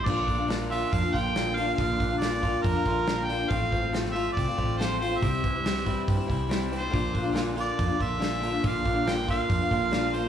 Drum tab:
CC |x---------------|----------------|----------------|----------------|
HH |--o-o-o-o-o-o-o-|o-o-o-o-o-o-o-o-|o-o-o-o-o-o-o-o-|o-o-o-o-o-o-o-o-|
SD |----o-------o---|----o-------o---|----oo------o---|----oo------o---|
BD |o-o-----o-o-----|o-o---o-o-o-----|o-o-----o-o-----|o-o---o-o-o-----|

CC |----------------|----------------|
HH |o-o-o-o-o-o-o-o-|o-o-o-o-o-o-o-o-|
SD |----o-------o---|----o-------o---|
BD |o-o-----o-o-----|o-o---o-o-o-----|